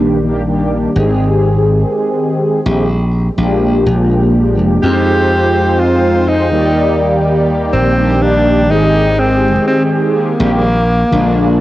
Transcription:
Already playing: D#3 G3 A#3 D4 G4
0.00 A#1
0.23 D#3 G3 A#3 D4 G4
0.47 D#3 G3 A#3 D4 G4
0.94 G#1 D#3 G#3 C4 G4 G#4
2.65 A#1 D#3 G3 G#3 C4 G4
3.37 A#1 F3 G#3 A#3 D4 G4
3.86 A#1
4.59 F1
4.81 F2 G#3 C4 D#4 F4 G4 C5
5.80 F4
6.28 D#4
6.51 D#2 D#3 G3 A#3 G4 D5
7.73 A#1 C4
7.97 D#3 G3 A#3 D4 G4
8.21 D#3 G3 A#3 D4 G4
8.68 G#1 D#3 G#3 C4 D#4 G4 G#4
9.19 C4
9.67 C4
10.16 A#3
10.39 A#1 D#3 G3 G#3 C4 G4
11.10 A#1 D3 F3 G#3 A#3 D4

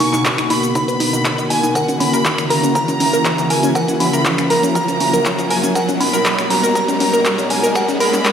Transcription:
Already playing: B2 A#3 F#4, riser
0.00 D#4 C#6, open hi-hat
0.13 D#4, clap, closed hi-hat, shaker
0.25 F#4, kick, clap, closed hi-hat, shaker
0.38 D#4, finger snap, closed hi-hat, shaker
0.50 D#4 B5, open hi-hat
0.63 closed hi-hat, shaker
0.75 D#4 B5, kick, closed hi-hat, shaker
0.88 B4, closed hi-hat, shaker
1.00 D#4, open hi-hat
1.13 D#4, closed hi-hat, shaker
1.25 C#5, finger snap, kick, clap, closed hi-hat, shaker
1.38 D#4, closed hi-hat, shaker
1.50 D#4 G#5, open hi-hat
1.63 D#4, closed hi-hat, shaker
1.75 C#3 E4 A#4 F#5, kick, closed hi-hat, shaker
1.88 C#4, closed hi-hat, shaker
2.00 C#4 B5, open hi-hat
2.13 A#4, closed hi-hat, shaker
2.25 C#4, kick, clap, closed hi-hat, shaker
2.38 C#4, finger snap, closed hi-hat, shaker
2.50 A#4 A#5, open hi-hat
2.63 C#4, closed hi-hat, shaker
2.75 A#4 A#5, kick, closed hi-hat, shaker
2.88 C#4, closed hi-hat, shaker
3.00 C#4, open hi-hat
3.13 A#4, closed hi-hat, shaker
3.25 C#4, kick, clap, closed hi-hat, shaker
3.38 C#4, closed hi-hat, shaker
3.50 A#4 G#5, open hi-hat
3.63 C#4, closed hi-hat, shaker
3.75 A#4 F#5, kick, closed hi-hat, shaker
3.88 C#4, closed hi-hat, shaker
4.00 C#4 B5, open hi-hat
4.13 A#4, closed hi-hat, shaker
4.25 C#4, kick, clap, closed hi-hat, shaker
4.38 C#4, finger snap, closed hi-hat, shaker
4.50 A#4 A#5, open hi-hat
4.63 C#4, closed hi-hat, shaker
4.75 A#4 A#5, kick, closed hi-hat, shaker
4.88 C#4, closed hi-hat, shaker
5.00 C#4, open hi-hat
5.13 A#4, closed hi-hat, shaker
5.25 C#4, kick, clap, closed hi-hat, shaker
5.39 C#4, closed hi-hat, shaker
5.50 A#4 G#5, open hi-hat
5.63 C#4, closed hi-hat, shaker
5.75 B2 A#3 D#4 F#4 A#4 F#5, kick, closed hi-hat, shaker
5.89 C#4, closed hi-hat, shaker
6.00 C#4 B5, open hi-hat
6.13 A#4, closed hi-hat, shaker
6.25 A#4, kick, clap, closed hi-hat, shaker
6.38 C#4, finger snap, closed hi-hat, shaker
6.50 C#4 A#5, open hi-hat
6.63 A#4, closed hi-hat, shaker
6.75 A#4 A#5, kick, closed hi-hat, shaker
6.88 C#4, closed hi-hat, shaker
7.00 C#4, open hi-hat
7.13 A#4, closed hi-hat, shaker
7.25 A#4, kick, clap, closed hi-hat, shaker
7.38 C#4, closed hi-hat, shaker
7.50 C#4 G#5, open hi-hat
7.63 A#4, closed hi-hat, shaker
7.75 G#4 A#4 F#5, finger snap, kick, closed hi-hat, shaker
7.88 C#4, closed hi-hat, shaker
8.00 A#4 B5, open hi-hat
8.13 C#4, clap, closed hi-hat, shaker
8.25 A#4, kick, clap, closed hi-hat, shaker

